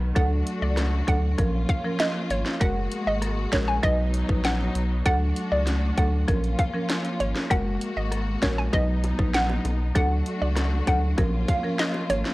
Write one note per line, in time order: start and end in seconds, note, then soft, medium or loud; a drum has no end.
0.00 0.12 B1 loud
0.00 0.15 D#3 medium
0.00 0.14 F#3 medium
0.00 0.15 B3 medium
0.16 0.43 D2 loud
0.16 0.72 F#3 medium
0.16 1.37 A3 medium
0.16 1.37 D4 medium
0.16 0.72 D4 medium
0.16 1.37 F#4 medium
0.16 0.72 A4 loud
0.16 0.28 F#5 loud
0.16 kick loud
0.16 closed hi-hat medium
0.47 closed hi-hat medium
0.62 1.02 C#2 medium
0.62 0.74 D5 medium
0.77 cross-stick medium
0.77 snare medium
0.77 closed hi-hat medium
1.08 1.35 D2 loud
1.08 1.24 F#3 medium
1.08 1.24 D4 medium
1.08 1.24 A4 medium
1.08 1.20 F#5 medium
1.08 kick loud
1.08 closed hi-hat medium
1.38 1.65 A#1 loud
1.38 1.54 F3 loud
1.38 3.81 A#3 medium
1.38 1.54 C#4 medium
1.38 2.60 C#4 medium
1.38 2.60 F4 loud
1.38 1.55 A#4 loud
1.38 kick loud
1.38 closed hi-hat medium
1.69 1.81 F5 medium
1.69 kick medium
1.69 closed hi-hat medium
1.84 2.00 F3 medium
1.84 2.01 C#4 medium
1.84 2.01 A#4 medium
2.00 2.11 D#5 loud
2.00 snare loud
2.00 closed hi-hat medium
2.30 2.44 G#1 loud
2.30 2.42 C#5 medium
2.30 closed hi-hat medium
2.46 snare medium
2.61 2.88 F#1 loud
2.61 3.17 G#3 loud
2.61 3.82 G#3 medium
2.61 3.17 F#4 loud
2.61 3.82 F#4 medium
2.61 3.17 A#4 loud
2.61 2.84 F#5 loud
2.61 kick loud
2.61 closed hi-hat medium
2.92 closed hi-hat medium
3.07 3.47 G#1 medium
3.07 3.18 D#5 medium
3.22 cross-stick medium
3.22 closed hi-hat medium
3.52 3.80 A#1 medium
3.52 3.69 G#3 medium
3.52 3.69 F#4 medium
3.52 3.69 A#4 medium
3.52 3.64 C#5 medium
3.52 kick loud
3.52 snare loud
3.52 closed hi-hat medium
3.68 3.79 G#5 medium
3.83 4.24 B1 loud
3.83 3.99 F#3 medium
3.83 5.05 F#3 medium
3.83 5.04 B3 medium
3.83 5.04 D#4 medium
3.83 3.99 D#4 medium
3.83 4.00 B4 loud
3.83 4.26 D#5 loud
3.83 kick loud
3.83 closed hi-hat medium
4.14 closed hi-hat medium
4.29 4.70 A#1 medium
4.29 4.45 F#3 medium
4.29 4.45 D#4 medium
4.29 4.45 B4 medium
4.29 kick loud
4.45 4.88 F#5 medium
4.45 snare loud
4.45 closed hi-hat medium
4.75 5.02 B1 loud
4.75 closed hi-hat medium
5.05 5.33 D2 loud
5.05 5.62 F#3 loud
5.05 6.27 A3 medium
5.05 5.62 D4 medium
5.05 6.27 D4 medium
5.05 6.27 F#4 medium
5.05 5.62 A4 loud
5.05 5.17 F#5 loud
5.05 kick loud
5.05 closed hi-hat medium
5.36 closed hi-hat medium
5.52 5.92 C#2 medium
5.52 5.63 D5 medium
5.67 snare medium
5.67 closed hi-hat medium
5.97 6.24 D2 loud
5.97 6.14 F#3 medium
5.97 6.14 D4 medium
5.97 6.14 A4 medium
5.97 6.09 F#5 medium
5.97 kick loud
5.97 closed hi-hat medium
6.28 6.55 A#1 loud
6.28 6.44 F3 loud
6.28 8.71 A#3 medium
6.28 7.49 C#4 medium
6.28 6.44 C#4 medium
6.28 7.49 F4 medium
6.28 6.44 A#4 loud
6.28 kick loud
6.28 closed hi-hat medium
6.44 closed hi-hat medium
6.59 6.70 F5 medium
6.59 kick loud
6.59 closed hi-hat medium
6.74 6.90 F3 medium
6.74 6.90 C#4 medium
6.74 6.90 A#4 medium
6.90 snare loud
6.90 closed hi-hat medium
7.05 closed hi-hat soft
7.20 7.34 G#1 loud
7.20 7.32 C#5 medium
7.20 closed hi-hat medium
7.36 snare medium
7.50 7.78 F#1 loud
7.50 8.07 G#3 loud
7.50 8.72 G#3 medium
7.50 8.72 F#4 medium
7.50 8.07 F#4 medium
7.50 8.07 A#4 loud
7.50 7.74 F#5 loud
7.50 kick loud
7.50 closed hi-hat medium
7.50 high bongo medium
7.81 closed hi-hat medium
7.97 8.37 G#1 medium
7.97 8.08 D#5 medium
8.12 cross-stick medium
8.12 closed hi-hat medium
8.42 8.69 A#1 medium
8.42 8.58 G#3 medium
8.42 8.59 F#4 medium
8.42 8.59 A#4 medium
8.42 8.54 C#5 medium
8.42 kick medium
8.42 snare loud
8.42 closed hi-hat medium
8.42 low bongo medium
8.58 8.70 G#5 medium
8.73 9.13 B1 loud
8.73 8.89 F#3 medium
8.73 9.94 F#3 medium
8.73 9.94 B3 medium
8.73 8.89 D#4 medium
8.73 9.94 D#4 medium
8.73 8.89 B4 loud
8.73 9.16 D#5 loud
8.73 kick loud
8.73 closed hi-hat medium
8.73 high bongo medium
9.04 closed hi-hat medium
9.04 high bongo medium
9.19 9.59 A#1 medium
9.19 9.35 F#3 medium
9.19 9.35 D#4 medium
9.19 9.35 B4 medium
9.19 kick loud
9.34 9.77 F#5 medium
9.34 snare loud
9.34 closed hi-hat medium
9.49 high bongo medium
9.65 9.92 B1 loud
9.65 closed hi-hat medium
9.65 low bongo medium
9.95 10.22 D2 loud
9.95 10.52 F#3 loud
9.95 11.17 A3 medium
9.95 10.52 D4 medium
9.95 11.17 D4 medium
9.95 11.17 F#4 medium
9.95 10.52 A4 loud
9.95 10.07 F#5 loud
9.95 kick loud
9.95 closed hi-hat medium
9.95 high bongo medium
10.26 closed hi-hat medium
10.41 10.82 C#2 medium
10.41 10.53 D5 medium
10.56 cross-stick medium
10.56 snare medium
10.56 closed hi-hat medium
10.87 11.14 D2 medium
10.87 11.03 F#3 medium
10.87 11.03 D4 medium
10.87 11.04 A4 medium
10.87 10.99 F#5 medium
10.87 kick loud
10.87 closed hi-hat medium
10.87 low bongo medium
11.18 11.45 A#1 loud
11.18 11.34 F3 medium
11.18 12.34 A#3 medium
11.18 12.34 C#4 medium
11.18 11.34 C#4 medium
11.18 12.34 F4 loud
11.18 11.34 A#4 loud
11.18 kick loud
11.18 closed hi-hat medium
11.18 high bongo medium
11.48 11.60 F5 medium
11.48 kick loud
11.48 closed hi-hat medium
11.48 high bongo medium
11.63 11.80 F3 medium
11.63 11.80 C#4 medium
11.63 11.80 A#4 medium
11.79 11.91 D#5 medium
11.79 snare loud
11.79 closed hi-hat medium
11.94 high bongo medium
12.10 12.23 G#1 loud
12.10 12.21 C#5 medium
12.10 closed hi-hat medium
12.10 low bongo medium
12.25 snare medium